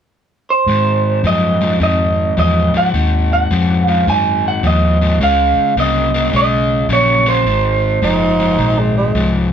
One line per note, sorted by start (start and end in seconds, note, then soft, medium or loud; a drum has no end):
0.50 1.21 C5 medium
0.67 1.22 G#2 medium
0.67 1.20 G#2 medium
0.67 1.21 D#3 medium
1.24 1.79 F#2 medium
1.24 1.57 G#2 medium
1.24 1.58 F3 medium
1.24 1.78 D#5 medium
1.61 1.79 G#2 medium
1.61 1.79 F3 medium
1.80 2.35 F2 medium
1.80 2.33 G#2 medium
1.80 2.34 D#3 medium
1.80 2.38 D#5 medium
2.37 2.72 E2 medium
2.37 2.70 G#2 medium
2.37 2.71 F3 medium
2.37 2.73 D#5 medium
2.74 2.92 G#2 medium
2.74 2.92 F3 medium
2.74 3.32 F#5 medium
2.74 muted fingered electric bass stroke soft
2.94 3.49 D#2 medium
2.94 3.47 G#2 medium
2.94 3.47 D#3 medium
3.33 3.86 F#5 loud
3.51 4.06 F2 medium
3.51 3.84 G#2 medium
3.51 3.84 F3 medium
3.86 4.05 G#2 medium
3.86 4.05 F3 medium
3.86 4.09 F5 loud
4.07 4.62 F#2 medium
4.07 4.60 G#2 medium
4.07 4.60 D#3 medium
4.07 4.46 G#5 loud
4.48 4.66 F#5 medium
4.63 5.18 D#2 medium
4.63 4.97 G#2 medium
4.63 4.97 F3 medium
4.63 5.23 D#5 medium
5.01 5.19 G#2 medium
5.01 5.19 F3 medium
5.20 5.54 C#2 medium
5.20 5.73 C#3 medium
5.20 5.73 G#3 medium
5.20 5.74 F5 medium
5.57 muted fingered electric bass stroke soft
5.77 6.31 C2 medium
5.77 6.10 C#3 medium
5.77 6.10 A#3 medium
5.77 6.35 D#5 medium
6.14 6.31 C#3 medium
6.14 6.32 A#3 medium
6.33 6.88 B1 medium
6.33 6.86 C#3 medium
6.33 6.86 G#3 medium
6.33 6.87 D#5 medium
6.89 7.44 A#1 medium
6.89 7.22 C#3 medium
6.89 7.23 A#3 medium
6.93 7.28 C#5 medium
7.26 7.44 C#3 medium
7.26 7.44 A#3 medium
7.26 8.92 C5 medium
7.45 8.00 G#1 medium
7.45 7.99 G#2 medium
7.45 7.99 D#3 medium
8.02 8.57 F#1 medium
8.02 8.35 G#2 medium
8.02 8.36 F3 medium
8.02 8.80 D#4 loud
8.39 8.57 G#2 medium
8.39 8.57 F3 medium
8.58 9.13 A#1 medium
8.58 9.11 G#2 medium
8.58 9.11 D#3 medium
8.79 8.96 G#3 medium
8.97 9.33 G#3 medium
9.15 9.53 C2 medium
9.15 9.48 G#2 medium
9.15 9.48 F3 medium